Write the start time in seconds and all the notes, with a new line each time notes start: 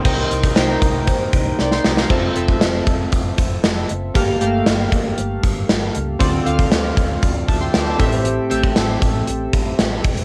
0.05 C2 C3 A#3 D#4 A#4 C5 G5, kick, crash
0.31 C2, closed hi-hat
0.44 kick, closed hi-hat
0.56 C2 D#4 A#4 C5 G5, snare, closed hi-hat
0.82 C2, kick, closed hi-hat
1.07 kick, closed hi-hat
1.33 C2, kick, closed hi-hat
1.59 C2 D5 G5, snare
1.72 G5 C6, snare
1.85 C2, snare
1.97 F5 A#5, snare
2.10 F1 C4 F4 A4 E5, kick, crash
2.35 F1 C4 F4 A4 E5, closed hi-hat
2.49 kick
2.61 F1, snare, closed hi-hat
2.87 F1, kick, closed hi-hat
3.12 F1, kick, closed hi-hat
3.38 F1, kick, closed hi-hat
3.64 F1, snare, closed hi-hat
3.89 F#1, closed hi-hat
4.14 G1 G2 A#3 G4 A4 F5, kick, closed hi-hat
4.41 G1 A3 G4 A4 F5, closed hi-hat
4.47 A#3
4.66 G1, snare, closed hi-hat
4.92 G1, kick, closed hi-hat
5.18 G1, closed hi-hat
5.43 G1, kick, closed hi-hat
5.69 G1, snare, closed hi-hat
5.95 C#2, closed hi-hat
6.19 D2 D3 C4 F4 A4 D5, kick, closed hi-hat
6.45 D2 C4 F4 A4 F5, closed hi-hat
6.59 kick, closed hi-hat
6.72 D2, snare, closed hi-hat
6.97 D2, kick, closed hi-hat
7.23 D2, kick, closed hi-hat
7.48 D2 E5 A5, kick, closed hi-hat
7.61 G5 C6
7.73 D2 A5 D6, snare, closed hi-hat
7.86 E5 A5
7.99 A1 A2 C4 G4 A4 E5, kick, closed hi-hat
8.12 closed hi-hat
8.25 closed hi-hat
8.50 A1 C4 G4 A4 E5, closed hi-hat
8.64 kick
8.76 A1, snare, closed hi-hat
9.02 A1, kick, closed hi-hat
9.28 A1, closed hi-hat
9.53 A1, kick, closed hi-hat
9.79 A1, snare, closed hi-hat
10.04 E1, kick, closed hi-hat
10.17 closed hi-hat